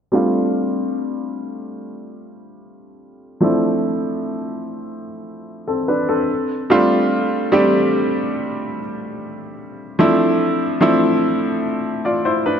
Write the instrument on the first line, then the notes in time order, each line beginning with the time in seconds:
grand piano
0.12 G3 A3 C4 D4 F4
3.40 F3 A3 C4 D4 E4
5.68 C4 A4
5.88 D4 B4
6.09 C4 A4
6.70 G3 A3 C4 D4 F4
7.52 G3 A3 C4 D4 G4
9.99 F3 A3 C4 D4 E4
10.81 F3 A3 C4 D4 E4
12.05 F4 D5
12.25 E4 C5
12.46 D4 B4